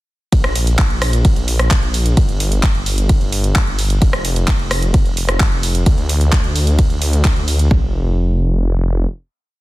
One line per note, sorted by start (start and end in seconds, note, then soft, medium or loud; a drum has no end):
0.32 2.15 A#1 medium
0.32 kick loud
0.32 closed hi-hat medium
0.32 ride medium
0.44 cross-stick medium
0.44 closed hi-hat soft
0.55 open hi-hat loud
0.67 closed hi-hat medium
0.78 kick loud
0.78 clap loud
0.78 closed hi-hat medium
0.78 ride medium
0.90 closed hi-hat soft
1.02 cross-stick medium
1.02 open hi-hat medium
1.13 closed hi-hat medium
1.25 kick loud
1.25 closed hi-hat medium
1.25 ride medium
1.36 closed hi-hat soft
1.48 open hi-hat loud
1.59 cross-stick medium
1.59 closed hi-hat medium
1.71 kick loud
1.71 clap loud
1.71 closed hi-hat medium
1.71 ride medium
1.83 closed hi-hat soft
1.94 open hi-hat medium
2.06 closed hi-hat medium
2.17 3.99 G1 medium
2.17 kick loud
2.17 closed hi-hat medium
2.17 ride medium
2.29 closed hi-hat soft
2.40 open hi-hat loud
2.52 closed hi-hat medium
2.63 kick loud
2.63 clap loud
2.63 closed hi-hat medium
2.63 ride medium
2.75 closed hi-hat soft
2.86 open hi-hat loud
2.98 closed hi-hat medium
3.09 kick loud
3.09 closed hi-hat medium
3.09 ride medium
3.21 closed hi-hat soft
3.32 open hi-hat loud
3.44 closed hi-hat medium
3.55 kick loud
3.55 clap loud
3.55 closed hi-hat medium
3.55 ride medium
3.67 closed hi-hat soft
3.79 open hi-hat loud
3.90 closed hi-hat medium
4.02 5.84 F1 medium
4.02 kick loud
4.02 closed hi-hat medium
4.02 ride medium
4.13 cross-stick medium
4.13 closed hi-hat soft
4.25 open hi-hat loud
4.36 closed hi-hat medium
4.48 kick loud
4.48 clap loud
4.48 closed hi-hat medium
4.48 ride medium
4.59 closed hi-hat soft
4.71 cross-stick medium
4.71 open hi-hat loud
4.82 closed hi-hat medium
4.94 kick loud
4.94 closed hi-hat medium
4.94 ride medium
5.06 closed hi-hat soft
5.17 open hi-hat loud
5.29 cross-stick medium
5.29 closed hi-hat medium
5.40 kick loud
5.40 clap loud
5.40 closed hi-hat medium
5.40 ride medium
5.52 closed hi-hat soft
5.63 open hi-hat loud
5.75 closed hi-hat medium
5.86 7.69 D2 medium
5.86 kick loud
5.86 closed hi-hat medium
5.86 ride medium
5.98 closed hi-hat soft
6.09 open hi-hat loud
6.21 closed hi-hat medium
6.32 kick loud
6.32 clap loud
6.32 closed hi-hat medium
6.32 ride medium
6.44 closed hi-hat soft
6.56 open hi-hat loud
6.67 closed hi-hat soft
6.79 kick loud
6.79 closed hi-hat medium
6.79 ride medium
6.90 closed hi-hat soft
7.02 open hi-hat loud
7.13 closed hi-hat soft
7.25 kick loud
7.25 clap loud
7.25 closed hi-hat medium
7.25 ride medium
7.36 closed hi-hat soft
7.48 open hi-hat loud
7.59 closed hi-hat medium
7.71 9.05 F1 loud
7.71 kick loud
7.71 floor tom loud